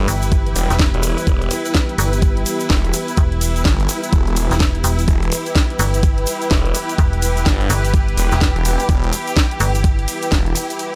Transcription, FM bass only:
0, 0, Header, 1, 2, 480
1, 0, Start_track
1, 0, Key_signature, 1, "minor"
1, 0, Tempo, 476190
1, 1280, Time_signature, 4, 2, 24, 8
1, 11039, End_track
2, 0, Start_track
2, 0, Title_t, "FM bass"
2, 0, Program_c, 0, 39
2, 79, Note_on_c, 0, 31, 104
2, 545, Note_off_c, 0, 31, 0
2, 708, Note_on_c, 0, 28, 97
2, 924, Note_off_c, 0, 28, 0
2, 2000, Note_on_c, 0, 31, 100
2, 2465, Note_off_c, 0, 31, 0
2, 3199, Note_on_c, 0, 28, 101
2, 3665, Note_off_c, 0, 28, 0
2, 4548, Note_on_c, 0, 28, 91
2, 4865, Note_off_c, 0, 28, 0
2, 4878, Note_on_c, 0, 28, 98
2, 5105, Note_off_c, 0, 28, 0
2, 5840, Note_on_c, 0, 31, 104
2, 6305, Note_off_c, 0, 31, 0
2, 7040, Note_on_c, 0, 28, 103
2, 7505, Note_off_c, 0, 28, 0
2, 7760, Note_on_c, 0, 31, 103
2, 8225, Note_off_c, 0, 31, 0
2, 8389, Note_on_c, 0, 28, 96
2, 8605, Note_off_c, 0, 28, 0
2, 9680, Note_on_c, 0, 31, 102
2, 10145, Note_off_c, 0, 31, 0
2, 11039, End_track
0, 0, End_of_file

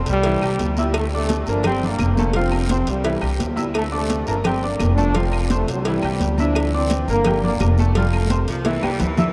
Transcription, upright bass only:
0, 0, Header, 1, 2, 480
1, 0, Start_track
1, 0, Tempo, 350467
1, 1298, Time_signature, 4, 2, 24, 8
1, 12777, End_track
2, 0, Start_track
2, 0, Title_t, "Upright bass"
2, 0, Program_c, 0, 32
2, 92, Note_on_c, 0, 36, 100
2, 541, Note_off_c, 0, 36, 0
2, 577, Note_on_c, 0, 36, 80
2, 801, Note_off_c, 0, 36, 0
2, 818, Note_on_c, 0, 38, 105
2, 1940, Note_off_c, 0, 38, 0
2, 2013, Note_on_c, 0, 31, 90
2, 2685, Note_off_c, 0, 31, 0
2, 2728, Note_on_c, 0, 29, 113
2, 3855, Note_off_c, 0, 29, 0
2, 3930, Note_on_c, 0, 36, 86
2, 4381, Note_off_c, 0, 36, 0
2, 4413, Note_on_c, 0, 36, 81
2, 4639, Note_off_c, 0, 36, 0
2, 4659, Note_on_c, 0, 38, 104
2, 5780, Note_off_c, 0, 38, 0
2, 5850, Note_on_c, 0, 31, 82
2, 6523, Note_off_c, 0, 31, 0
2, 6578, Note_on_c, 0, 29, 112
2, 7699, Note_off_c, 0, 29, 0
2, 7770, Note_on_c, 0, 36, 96
2, 8220, Note_off_c, 0, 36, 0
2, 8263, Note_on_c, 0, 36, 79
2, 8484, Note_off_c, 0, 36, 0
2, 8494, Note_on_c, 0, 38, 111
2, 9617, Note_off_c, 0, 38, 0
2, 9696, Note_on_c, 0, 31, 98
2, 10366, Note_off_c, 0, 31, 0
2, 10414, Note_on_c, 0, 29, 111
2, 11537, Note_off_c, 0, 29, 0
2, 11603, Note_on_c, 0, 36, 90
2, 12056, Note_off_c, 0, 36, 0
2, 12094, Note_on_c, 0, 36, 73
2, 12319, Note_off_c, 0, 36, 0
2, 12333, Note_on_c, 0, 38, 95
2, 12777, Note_off_c, 0, 38, 0
2, 12777, End_track
0, 0, End_of_file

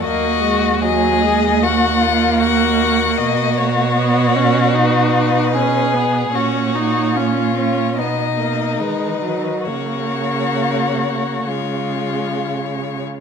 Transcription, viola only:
0, 0, Header, 1, 2, 480
1, 0, Start_track
1, 0, Tempo, 784314
1, 35, Time_signature, 4, 2, 24, 8
1, 3396, Tempo, 814111
1, 5316, Tempo, 891530
1, 7683, End_track
2, 0, Start_track
2, 0, Title_t, "Viola"
2, 0, Program_c, 0, 41
2, 23, Note_on_c, 0, 58, 60
2, 248, Note_off_c, 0, 58, 0
2, 265, Note_on_c, 0, 56, 59
2, 502, Note_on_c, 0, 54, 60
2, 511, Note_off_c, 0, 56, 0
2, 749, Note_on_c, 0, 56, 59
2, 758, Note_off_c, 0, 54, 0
2, 998, Note_on_c, 0, 58, 58
2, 1007, Note_off_c, 0, 56, 0
2, 2423, Note_off_c, 0, 58, 0
2, 2427, Note_on_c, 0, 59, 58
2, 2668, Note_on_c, 0, 61, 55
2, 2677, Note_off_c, 0, 59, 0
2, 2908, Note_on_c, 0, 63, 49
2, 2918, Note_off_c, 0, 61, 0
2, 3396, Note_on_c, 0, 61, 55
2, 3405, Note_off_c, 0, 63, 0
2, 3627, Note_on_c, 0, 59, 49
2, 3636, Note_off_c, 0, 61, 0
2, 3859, Note_off_c, 0, 59, 0
2, 3863, Note_on_c, 0, 61, 53
2, 4104, Note_on_c, 0, 63, 51
2, 4113, Note_off_c, 0, 61, 0
2, 4347, Note_on_c, 0, 61, 50
2, 4356, Note_off_c, 0, 63, 0
2, 4585, Note_off_c, 0, 61, 0
2, 4588, Note_on_c, 0, 61, 49
2, 4830, Note_on_c, 0, 59, 41
2, 4839, Note_off_c, 0, 61, 0
2, 5071, Note_off_c, 0, 59, 0
2, 5074, Note_on_c, 0, 58, 41
2, 5314, Note_on_c, 0, 56, 44
2, 5322, Note_off_c, 0, 58, 0
2, 5541, Note_off_c, 0, 56, 0
2, 5544, Note_on_c, 0, 54, 43
2, 5782, Note_on_c, 0, 58, 42
2, 5790, Note_off_c, 0, 54, 0
2, 6751, Note_on_c, 0, 56, 36
2, 6759, Note_off_c, 0, 58, 0
2, 7603, Note_off_c, 0, 56, 0
2, 7683, End_track
0, 0, End_of_file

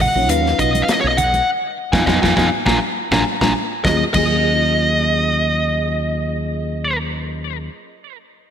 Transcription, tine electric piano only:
0, 0, Header, 1, 2, 480
1, 0, Start_track
1, 0, Key_signature, -6, "minor"
1, 0, Tempo, 592300
1, 1202, Time_signature, 4, 2, 24, 8
1, 6892, End_track
2, 0, Start_track
2, 0, Title_t, "Tine electric piano"
2, 0, Program_c, 0, 4
2, 128, Note_on_c, 0, 63, 53
2, 130, Note_on_c, 0, 61, 53
2, 132, Note_on_c, 0, 54, 62
2, 132, Note_on_c, 0, 65, 57
2, 134, Note_on_c, 0, 73, 60
2, 212, Note_off_c, 0, 63, 0
2, 213, Note_off_c, 0, 61, 0
2, 214, Note_off_c, 0, 54, 0
2, 214, Note_off_c, 0, 65, 0
2, 215, Note_off_c, 0, 73, 0
2, 231, Note_on_c, 0, 61, 64
2, 233, Note_on_c, 0, 54, 69
2, 233, Note_on_c, 0, 63, 69
2, 238, Note_on_c, 0, 71, 86
2, 239, Note_on_c, 0, 65, 60
2, 947, Note_off_c, 0, 61, 0
2, 947, Note_off_c, 0, 63, 0
2, 948, Note_off_c, 0, 54, 0
2, 950, Note_off_c, 0, 65, 0
2, 950, Note_off_c, 0, 71, 0
2, 1580, Note_on_c, 0, 59, 82
2, 1581, Note_on_c, 0, 65, 86
2, 1583, Note_on_c, 0, 63, 80
2, 1648, Note_off_c, 0, 59, 0
2, 1648, Note_off_c, 0, 65, 0
2, 1649, Note_off_c, 0, 63, 0
2, 1689, Note_on_c, 0, 59, 98
2, 1689, Note_on_c, 0, 65, 89
2, 1690, Note_on_c, 0, 63, 93
2, 1768, Note_off_c, 0, 59, 0
2, 1768, Note_off_c, 0, 65, 0
2, 1769, Note_off_c, 0, 63, 0
2, 1816, Note_on_c, 0, 65, 85
2, 1818, Note_on_c, 0, 59, 77
2, 1818, Note_on_c, 0, 63, 70
2, 1885, Note_off_c, 0, 65, 0
2, 1886, Note_off_c, 0, 59, 0
2, 1886, Note_off_c, 0, 63, 0
2, 1933, Note_on_c, 0, 65, 79
2, 1934, Note_on_c, 0, 59, 85
2, 1936, Note_on_c, 0, 63, 83
2, 2010, Note_off_c, 0, 65, 0
2, 2011, Note_off_c, 0, 59, 0
2, 2012, Note_off_c, 0, 63, 0
2, 2171, Note_on_c, 0, 62, 77
2, 2175, Note_on_c, 0, 58, 77
2, 2175, Note_on_c, 0, 65, 76
2, 2249, Note_off_c, 0, 62, 0
2, 2251, Note_off_c, 0, 65, 0
2, 2252, Note_off_c, 0, 58, 0
2, 2536, Note_on_c, 0, 62, 84
2, 2538, Note_on_c, 0, 58, 83
2, 2538, Note_on_c, 0, 65, 76
2, 2606, Note_off_c, 0, 62, 0
2, 2607, Note_off_c, 0, 58, 0
2, 2607, Note_off_c, 0, 65, 0
2, 2775, Note_on_c, 0, 65, 84
2, 2776, Note_on_c, 0, 58, 94
2, 2776, Note_on_c, 0, 62, 96
2, 2845, Note_off_c, 0, 58, 0
2, 2845, Note_off_c, 0, 62, 0
2, 2845, Note_off_c, 0, 65, 0
2, 3117, Note_on_c, 0, 54, 73
2, 3127, Note_on_c, 0, 58, 59
2, 3135, Note_on_c, 0, 61, 68
2, 3142, Note_on_c, 0, 65, 64
2, 3152, Note_on_c, 0, 68, 78
2, 3259, Note_off_c, 0, 54, 0
2, 3265, Note_off_c, 0, 58, 0
2, 3269, Note_off_c, 0, 61, 0
2, 3272, Note_off_c, 0, 65, 0
2, 3278, Note_off_c, 0, 68, 0
2, 3345, Note_on_c, 0, 54, 81
2, 3358, Note_on_c, 0, 58, 68
2, 3363, Note_on_c, 0, 61, 63
2, 3373, Note_on_c, 0, 65, 73
2, 3378, Note_on_c, 0, 68, 90
2, 6218, Note_off_c, 0, 54, 0
2, 6225, Note_off_c, 0, 58, 0
2, 6227, Note_off_c, 0, 61, 0
2, 6232, Note_off_c, 0, 65, 0
2, 6234, Note_off_c, 0, 68, 0
2, 6892, End_track
0, 0, End_of_file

